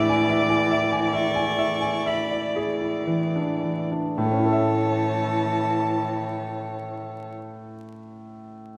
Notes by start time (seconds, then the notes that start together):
Already playing: A2 E3 D4 E4 G#4 D5 E5 D6
0.09 G#5
0.29 E5
0.49 G#5
0.71 E5
0.92 G#5
1.14 E5 C#6
1.35 G#5
1.59 E5
1.81 G#5
2.06 E5 B5
2.31 D5
2.56 G#4
2.81 E4
3.07 E3
3.35 D4
3.63 E3
3.92 D4
4.17 A2 E3 C#5 A5
4.25 A3
4.32 C#4
4.39 E4
4.46 A4
4.53 E5